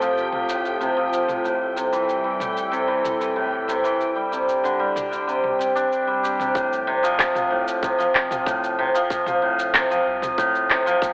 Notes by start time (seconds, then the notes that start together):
Already playing: C3 A3 F4 G4 A4 G5
0.01 F3, cabasa
0.18 cabasa
0.33 F3, mid tom
0.49 A2, cabasa
0.65 cabasa
0.81 C3, cabasa
0.97 F3
1.13 cabasa
1.28 F3, mid tom, cabasa
1.44 A2 G3 E4 A4, cabasa
1.76 C3, cabasa
1.92 E3, cabasa
2.09 cabasa
2.24 E3
2.40 A2, mid tom, cabasa
2.57 cabasa
2.72 C3, cabasa
2.88 E3
3.04 mid tom, cabasa
3.20 E3, cabasa
3.36 A2
3.68 C3, cabasa
3.84 E3, cabasa
4.00 G3 D4 G4, cabasa
4.16 G3
4.32 C3, cabasa
4.49 cabasa
4.63 D3, cabasa
4.79 G3
4.96 mid tom, cabasa
5.11 G3, cabasa
5.27 C3, cabasa
5.44 mid tom
5.59 C3, cabasa
5.75 D4, cabasa
5.93 cabasa
6.07 G3
6.23 G4, cabasa
6.39 C3, mid tom, cabasa
6.55 F1 A2, kick, cabasa
6.73 cabasa
6.87 C3
7.03 F3, cabasa
7.19 kick, clap, cabasa
7.35 F3, mid tom, cabasa
7.51 A2
7.68 cabasa
7.83 F1 C3, kick, cabasa
7.99 F3, cabasa
8.15 clap
8.31 F3, mid tom, cabasa
8.46 A2, kick, cabasa
8.64 cabasa
8.79 C3
8.94 F3, cabasa
9.10 F1, kick, cabasa
9.26 F3, mid tom, cabasa
9.42 A2
9.59 cabasa
9.74 C3, kick, clap, cabasa
9.90 F3, cabasa
10.06 C2
10.22 F3, mid tom, cabasa
10.38 F1 A2, kick, cabasa
10.55 cabasa
10.70 C3, clap
10.86 F3, cabasa
11.02 kick, cabasa